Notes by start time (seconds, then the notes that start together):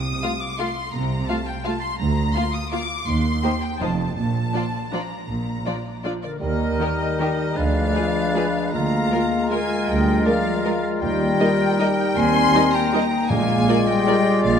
Already playing: C2 C3 D#6
0.23 A3 F4 F5
0.40 D6
0.59 A3 F4 F5 C6
0.93 C2 C3 A#5
1.27 A3 F4 F5 A5
1.47 G5
1.65 A3 F4 F5 A5
1.82 C6
1.99 D2 A#5
2.34 A#3 F4 F5 C6
2.52 D#6
2.70 A#3 F4 F5 D6
3.06 D#2 C6
3.43 A#3 D#4 G4 C5
3.62 G5
3.80 F1 F2 F3 D#4 F4 C5 A5
4.17 A#1 A#2 A5
4.53 F3 D4 F4 D5
4.92 F3 D4 F4 D5 A#5
5.28 A#1 A#2
5.66 F3 D4 F4 D5
6.04 F3 D4 F4 D5
6.23 D3 A#4 D5
6.40 D#2 D#3 G3 D#4 A#4 D#5
6.80 D#3 D#4 G4 A#4
7.20 D#3 D#4 G4 A#4
7.55 D2 F3 G#3 D4 B4 D5 F5
7.95 G#3 F4 G#4 B4
8.33 G#3 F4 G#4 B4
8.72 D2 G#3 A#3 F4 A#4 F5 A#5
9.12 G#3 F4 A#4
9.50 G#3 F4 A#4 F5 G#5
9.88 D2 G3 D#5 G5
10.25 F3 G#3 F4 A#4 D5 F5
10.64 G#3 F4 A#4
11.02 D#2 G3 A#4 D#5 G5
11.40 G3 D#4 A#4 D#5
11.79 G3 D#4 A#4 D#5
12.16 D#2 C4 G#5 C6
12.54 G3 D#4 A#4 D#5
12.73 A#3 G5 A#5
12.93 G3 D#4 A#4 D#5
13.29 A#1 A#2 G#3 F4 D5 F5 G#5
13.67 G#3 F4 A#4 D5
13.87 G3 D#5 G5
14.06 G#3 F4 A#4 D5
14.43 A#1 A#2 F3 D5 F5